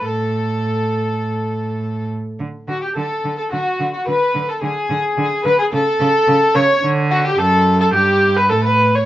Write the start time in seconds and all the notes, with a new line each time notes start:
0.04 A2 A4
2.39 D3
2.68 D3 F#4
2.82 G4
2.95 D3 A4
3.25 D3
3.38 A4
3.51 D3 F#4
3.80 D3
3.93 F#4
4.06 D3 B4
4.35 D3
4.48 A4
4.62 D3 G#4
4.90 D3
5.18 D3
5.45 D3 B4
5.58 G#4
5.72 C#3 A4
6.00 C#3
6.27 C#3
6.55 C#3 C#5
6.83 D3
7.11 F#4
7.25 G4
7.38 F#2 A4
7.79 A4
7.93 G2 G4
8.37 B4
8.50 A2 A4
8.64 B4
8.95 C#5